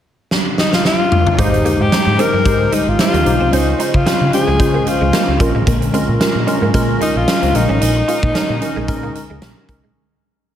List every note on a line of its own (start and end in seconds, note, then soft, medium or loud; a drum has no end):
0.31 snare medium
0.58 0.72 D#4 medium
0.58 snare medium
0.73 0.85 F4 medium
0.73 snare medium
0.85 1.35 F4 medium
0.85 snare medium
1.12 mid tom medium
1.27 mid tom medium
1.38 1.59 G#1 loud
1.38 2.15 G#2 medium
1.38 1.60 G#3 medium
1.38 1.49 G#3 medium
1.38 1.60 D#4 medium
1.38 1.83 D#4 medium
1.38 1.61 G4 medium
1.38 1.61 C5 loud
1.38 kick medium
1.38 closed hi-hat medium
1.53 muted clean electric guitar stroke soft
1.53 closed hi-hat soft
1.65 1.87 G#3 medium
1.65 1.76 A#3 medium
1.65 1.87 D#4 medium
1.65 1.87 G4 medium
1.65 1.88 C5 medium
1.65 closed hi-hat medium
1.80 1.89 G#2 medium
1.80 2.21 G4 medium
1.91 2.14 G#3 medium
1.91 2.14 D#4 medium
1.91 2.14 G4 medium
1.91 2.14 C5 medium
1.91 muted clean electric guitar stroke soft
1.91 muted picked electric bass stroke soft
1.91 snare loud
1.91 closed hi-hat medium
2.07 2.16 G#2 medium
2.18 2.40 G#3 medium
2.18 2.30 C4 medium
2.18 2.41 D#4 medium
2.18 2.41 G4 medium
2.18 2.75 A#4 loud
2.18 2.41 C5 medium
2.18 closed hi-hat medium
2.33 2.43 G2 medium
2.33 2.42 G#3 medium
2.45 2.66 G#2 medium
2.45 2.67 G#3 medium
2.45 2.68 D#4 medium
2.45 2.68 G4 medium
2.45 2.68 C5 medium
2.45 kick medium
2.45 closed hi-hat medium
2.72 2.83 G3 medium
2.72 2.94 G#3 medium
2.72 2.94 D#4 medium
2.72 2.90 D#4 medium
2.72 2.95 G4 medium
2.72 2.95 C5 medium
2.72 closed hi-hat medium
2.87 2.96 G#1 medium
2.87 3.00 F4 medium
2.99 3.21 G#3 medium
2.99 3.21 D#4 medium
2.99 3.50 F4 medium
2.99 3.21 G4 medium
2.99 3.22 C5 medium
2.99 snare loud
2.99 closed hi-hat medium
3.14 3.23 D#2 medium
3.14 3.23 A#3 medium
3.14 closed hi-hat soft
3.25 3.37 B1 medium
3.25 3.48 G#3 medium
3.25 3.48 D#4 medium
3.25 3.48 G4 medium
3.25 3.48 C5 medium
3.25 muted clean electric guitar stroke soft
3.25 closed hi-hat medium
3.40 3.50 C2 medium
3.40 3.49 C4 medium
3.52 3.73 C#2 loud
3.52 4.29 C#3 medium
3.52 3.75 G#3 medium
3.52 3.75 C#4 medium
3.52 3.63 C#4 medium
3.52 3.97 D#4 medium
3.52 3.75 F4 medium
3.52 3.75 C5 medium
3.52 closed hi-hat medium
3.67 muted clean electric guitar stroke soft
3.79 4.01 G#3 medium
3.79 4.02 C#4 medium
3.79 3.90 D#4 medium
3.79 4.02 F4 medium
3.79 4.02 C5 medium
3.79 closed hi-hat medium
3.94 4.03 C#3 medium
3.94 4.33 F4 medium
3.94 kick medium
4.06 4.28 G#3 medium
4.06 4.17 C4 medium
4.06 4.28 C#4 medium
4.06 4.29 F4 medium
4.06 4.29 C5 medium
4.06 muted picked electric bass stroke soft
4.06 snare loud
4.06 closed hi-hat medium
4.21 4.30 C#3 loud
4.21 muted clean electric guitar stroke soft
4.32 4.55 G#3 medium
4.32 4.55 C#4 medium
4.32 4.55 F4 medium
4.32 4.89 G#4 loud
4.32 4.55 C5 medium
4.32 closed hi-hat medium
4.48 4.57 C#2 medium
4.48 4.57 G#3 medium
4.59 4.80 C#3 medium
4.59 4.82 G#3 medium
4.59 4.82 C#4 medium
4.59 4.82 F4 medium
4.59 4.82 C5 medium
4.59 kick medium
4.59 closed hi-hat medium
4.74 4.83 A#3 medium
4.86 5.08 G#3 medium
4.86 5.09 C#4 medium
4.86 5.09 F4 medium
4.86 5.41 F4 medium
4.86 5.09 C5 medium
4.86 muted clean electric guitar stroke soft
4.86 closed hi-hat medium
5.01 5.10 C#2 medium
5.01 5.10 G#3 medium
5.12 5.35 G#3 medium
5.12 5.24 A#3 medium
5.12 5.35 C#4 medium
5.12 5.35 F4 medium
5.12 5.36 C5 medium
5.12 snare loud
5.12 closed hi-hat medium
5.28 5.37 C#2 medium
5.39 5.51 A#1 medium
5.39 6.17 A#2 medium
5.39 5.84 G#3 medium
5.39 5.84 C#4 medium
5.39 5.84 F4 medium
5.39 5.85 A#4 medium
5.39 muted clean electric guitar stroke soft
5.39 kick medium
5.39 closed hi-hat medium
5.55 5.64 A1 medium
5.55 5.64 G#3 medium
5.67 5.87 A#1 loud
5.67 5.78 A#3 medium
5.67 kick loud
5.67 closed hi-hat medium
5.82 muted clean electric guitar stroke soft
5.82 closed hi-hat soft
5.93 6.16 G#3 medium
5.93 6.05 C4 medium
5.93 6.16 C#4 medium
5.93 6.16 F4 medium
5.93 6.16 A#4 medium
5.93 closed hi-hat medium
6.09 6.18 A#2 medium
6.20 6.42 G#3 medium
6.20 6.43 C#4 medium
6.20 6.43 F4 medium
6.20 6.43 A#4 medium
6.20 muted clean electric guitar stroke soft
6.20 muted picked electric bass stroke soft
6.20 snare loud
6.20 closed hi-hat medium
6.35 6.44 A#2 medium
6.47 6.69 G#3 medium
6.47 6.69 C#4 medium
6.47 6.58 C#4 medium
6.47 6.70 F4 medium
6.47 6.70 A#4 medium
6.47 closed hi-hat medium
6.62 6.71 G#2 medium
6.62 6.71 A#3 medium
6.74 6.94 A#2 medium
6.74 6.96 G#3 loud
6.74 6.96 C#4 loud
6.74 6.96 F4 loud
6.74 6.97 A#4 loud
6.74 kick medium
6.74 closed hi-hat medium
7.00 7.23 G#3 medium
7.00 7.12 G#3 medium
7.00 7.23 C#4 medium
7.00 7.18 D#4 medium
7.00 7.23 F4 medium
7.00 7.23 A#4 medium
7.00 closed hi-hat medium
7.16 7.25 A#1 medium
7.16 7.57 F4 loud
7.27 7.50 G#3 medium
7.27 7.50 C#4 medium
7.27 7.50 F4 medium
7.27 7.50 A#4 medium
7.27 snare loud
7.27 closed hi-hat medium
7.42 7.52 C#2 medium
7.42 7.51 C4 medium
7.42 closed hi-hat medium
7.54 7.66 A#1 medium
7.54 8.31 A#2 medium
7.54 7.99 G#3 medium
7.54 7.99 C#4 medium
7.54 7.99 D#4 medium
7.54 9.42 D#4 loud
7.54 7.99 A#4 medium
7.54 muted clean electric guitar stroke soft
7.54 closed hi-hat medium
7.69 7.78 A1 medium
7.69 7.78 C#4 medium
7.81 8.01 A#1 loud
7.81 7.92 D#4 medium
7.81 closed hi-hat medium
7.96 muted clean electric guitar stroke soft
8.08 8.30 G#3 medium
8.08 8.30 C#4 medium
8.08 8.30 D#4 medium
8.08 8.19 F4 medium
8.08 8.31 A#4 medium
8.08 closed hi-hat medium
8.23 8.32 A#2 medium
8.23 kick medium
8.34 8.57 G#3 medium
8.34 8.45 C#4 medium
8.34 8.57 C#4 medium
8.34 8.57 D#4 medium
8.34 8.57 A#4 medium
8.34 muted picked electric bass stroke soft
8.34 snare loud
8.34 closed hi-hat medium
8.49 8.59 A#2 medium
8.49 muted clean electric guitar stroke soft
8.61 8.84 G#3 medium
8.61 8.84 C#4 medium
8.61 8.84 D#4 medium
8.61 8.84 A#4 medium
8.61 closed hi-hat medium
8.76 8.90 A#1 medium
8.76 8.85 G#3 medium
8.88 9.08 A#2 medium
8.88 9.10 G#3 loud
8.88 9.10 C#4 medium
8.88 9.11 D#4 loud
8.88 9.11 A#4 loud
8.88 kick medium
8.88 closed hi-hat medium
9.03 9.12 A#3 medium
9.15 9.37 G#3 medium
9.15 9.37 C#4 medium
9.15 9.37 D#4 medium
9.15 9.38 A#4 medium
9.15 muted clean electric guitar stroke soft
9.15 closed hi-hat medium
9.30 9.39 C#2 medium
9.30 9.39 G#3 medium
9.41 9.64 G#3 medium
9.41 9.53 A#3 medium
9.41 9.64 C#4 medium
9.41 9.64 D#4 medium
9.41 9.64 A#4 medium
9.41 snare loud
9.41 closed hi-hat medium
9.68 9.80 C2 medium
9.68 9.91 G#3 medium
9.68 9.91 C#4 medium
9.68 9.91 D#4 medium
9.68 9.91 A#4 medium
9.68 muted clean electric guitar stroke soft
9.68 kick medium
9.68 closed hi-hat medium
9.84 9.93 A#1 medium
9.84 9.92 G#3 medium